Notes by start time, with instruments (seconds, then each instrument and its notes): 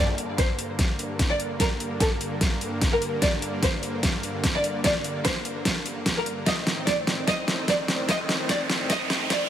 Already playing: supersaw synth G2 D3 A#3
0.18 closed hi-hat
0.38 violin section C5, kick, snare, closed hi-hat
0.59 closed hi-hat
0.79 kick, snare, closed hi-hat
0.99 closed hi-hat
1.19 kick, snare, closed hi-hat
1.30 violin section D5
1.40 closed hi-hat
1.60 violin section A#4, kick, snare, closed hi-hat
1.80 closed hi-hat
2.00 violin section A4, kick, snare, closed hi-hat
2.21 closed hi-hat
2.41 kick, snare, closed hi-hat
2.61 closed hi-hat
2.81 kick, snare, closed hi-hat
2.92 violin section A#4
3.02 closed hi-hat
3.22 violin section D5, kick, snare, closed hi-hat
3.42 closed hi-hat
3.63 violin section C5, kick, snare, closed hi-hat
3.83 closed hi-hat
4.03 kick, snare, closed hi-hat
4.23 closed hi-hat
4.44 kick, snare, closed hi-hat
4.54 violin section D5
4.64 closed hi-hat
4.84 violin section D5, kick, snare, closed hi-hat
5.04 closed hi-hat
5.25 violin section C5, kick, snare, closed hi-hat
5.45 closed hi-hat
5.65 kick, snare, closed hi-hat
5.86 closed hi-hat
6.06 kick, snare, closed hi-hat
6.16 violin section A#4
6.26 closed hi-hat
6.46 supersaw synth A2 D#3 C4, violin section D#5, kick, snare, closed hi-hat, riser
6.67 snare, closed hi-hat
6.87 violin section D5, kick, snare, closed hi-hat
7.07 snare, closed hi-hat
7.28 violin section D#5, kick, snare, closed hi-hat
7.48 snare, closed hi-hat
7.68 violin section D5, kick, snare, closed hi-hat
7.88 snare, closed hi-hat
8.09 violin section D#5, kick, snare, closed hi-hat
8.29 snare, closed hi-hat
8.49 violin section D5, kick, snare, closed hi-hat
8.70 snare, closed hi-hat
8.90 violin section D#5, kick, snare, closed hi-hat
9.10 snare, closed hi-hat
9.30 violin section D5, kick, snare, closed hi-hat